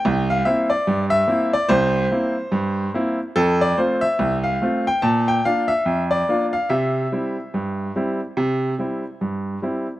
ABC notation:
X:1
M:2/4
L:1/16
Q:"Swing 16ths" 1/4=72
K:Cmix
V:1 name="Grand piano"
g f e d2 e2 d | c8 | A d c e2 f2 g | a g f e2 d2 f |
e8- | e4 z4 |]
V:2 name="Grand piano"
C,,2 [B,CE]2 G,,2 [B,CE]2 | C,,2 [B,CE]2 G,,2 [B,CE]2 | F,,2 [A,CF]2 C,,2 [A,CF]2 | B,,2 [B,DF]2 F,,2 [B,DF]2 |
C,2 [G,CE]2 G,,2 [G,CE]2 | C,2 [G,CE]2 G,,2 [G,CE]2 |]